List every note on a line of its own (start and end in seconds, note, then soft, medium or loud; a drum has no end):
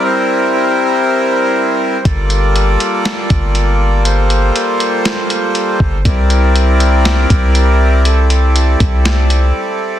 0.00 6.01 G3 medium
0.00 2.01 C4 medium
0.00 2.01 E4 medium
0.00 2.01 A#4 medium
0.05 2.03 C5 medium
2.05 2.77 G1 loud
2.05 6.01 A#3 medium
2.05 6.01 F4 medium
2.05 6.01 A4 medium
2.05 4.03 D5 medium
2.05 kick loud
2.05 closed hi-hat medium
2.30 closed hi-hat medium
2.56 closed hi-hat medium
2.80 closed hi-hat medium
3.05 snare loud
3.05 closed hi-hat medium
3.30 4.51 G1 loud
3.30 kick loud
3.30 closed hi-hat medium
3.55 closed hi-hat medium
4.05 6.03 C5 medium
4.05 closed hi-hat medium
4.30 closed hi-hat medium
4.56 closed hi-hat medium
4.80 closed hi-hat medium
5.05 snare loud
5.05 closed hi-hat medium
5.30 closed hi-hat medium
5.55 closed hi-hat medium
5.80 6.04 G1 loud
5.80 kick medium
6.05 7.26 C2 loud
6.05 9.99 G3 medium
6.05 9.99 C4 medium
6.05 9.99 E4 medium
6.05 8.03 A#4 medium
6.05 9.99 D5 medium
6.05 kick loud
6.05 closed hi-hat medium
6.30 closed hi-hat medium
6.56 closed hi-hat medium
6.80 closed hi-hat medium
7.05 snare loud
7.05 closed hi-hat medium
7.30 8.76 C2 loud
7.30 kick loud
7.30 closed hi-hat medium
7.55 closed hi-hat medium
8.05 9.99 A4 medium
8.05 closed hi-hat medium
8.30 closed hi-hat medium
8.56 closed hi-hat medium
8.80 9.52 C2 loud
8.80 kick medium
8.80 closed hi-hat medium
9.05 snare loud
9.05 closed hi-hat medium
9.30 closed hi-hat medium